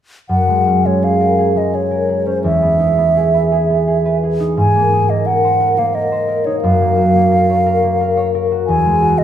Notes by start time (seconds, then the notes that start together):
0.29 F#2 F#5
0.48 G#3
0.67 C#4
0.85 G#3 C#5
1.03 G#4 F5
1.21 A#4
1.38 G#4
1.56 G#3 D#5
1.73 G#4 C#5
1.91 A#4
2.09 G#4
2.26 C#4 C5
2.44 E2 E5
2.62 B3
2.79 D#4
2.98 B3
3.17 G#4
3.34 B4
3.52 G#4
3.70 B3
3.88 G#4
4.05 B4
4.23 G#4
4.40 D#4
4.57 G#2 G#5
4.76 A#3
4.93 D#4
5.10 A#3 D#5
5.26 A#4 F#5
5.44 C5
5.60 A#4
5.78 A#3 F5
5.94 A#4 D#5
6.12 C5
6.28 A#4
6.45 D#4 C#5
6.61 F#2 F5
6.81 A#3
6.97 F#4
7.16 A#3
7.32 A#4
7.50 C#5
7.66 A#4
7.83 A#3
8.01 A#4
8.17 C#5
8.35 A#4
8.52 F#4
8.67 E2 G#5
8.85 G#3
9.02 F#4
9.18 G#3 D#5